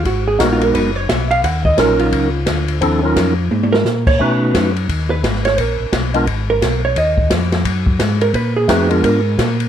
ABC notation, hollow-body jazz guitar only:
X:1
M:4/4
L:1/8
Q:"Swing" 1/4=174
K:Ebm
V:1 name="Hollow-body jazz guitar"
G A (3G F B c d _f =f | g e B F4- F | z4 z B2 d | =B2 z3 B2 d |
B2 z3 B2 d | e2 z4 z B | c A3 B3 z |]